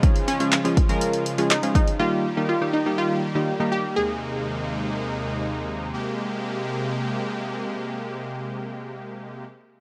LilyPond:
<<
  \new Staff \with { instrumentName = "Synth pluck" } { \time 4/4 \key aes \major \tempo 4 = 122 ees'8 des'2~ des'8 ees'8 ees'8 | f'4 f'8 ees'8 f'4. g'8 | aes'2. r4 | r1 |
r1 | }
  \new Staff \with { instrumentName = "Analog polysynth" } { \time 4/4 \key aes \major <f aes des' f' aes'>8 r16 <f aes des' f' aes'>16 r16 <f aes des' f' aes'>16 r16 <f aes des' f' bes'>8. r16 <f aes des' f' aes'>16 r16 <f aes des' f' aes'>8 r16 | <ees g bes ees' g'>8 r16 <ees g bes ees' g'>16 r16 <ees g bes ees' g'>16 r16 <ees g bes ees' g'>8. r16 <ees g bes ees' g'>16 r16 <ees g bes ees' g'>8 r16 | r1 | r1 |
r1 | }
  \new Staff \with { instrumentName = "Supersaw synth" } { \clef bass \time 4/4 \key aes \major << { <des f f'>1 | <ees g g'>1 | <ees, c aes ees'>1 | <c aes bes g'>1~ |
<c aes bes g'>1 | } \\ { aes1 | bes1~ | bes1 | r1 |
r1 | } >> }
  \new DrumStaff \with { instrumentName = "Drums" } \drummode { \time 4/4 <hh bd>16 hh16 hh16 hh16 <hc hh>16 hh16 <hh bd>16 hh16 hh16 hh16 hh16 hh16 <hc hh>16 hh16 <hh bd>16 hh16 | r4 r4 r4 r4 | r4 r4 r4 r4 | r4 r4 r4 r4 |
r4 r4 r4 r4 | }
>>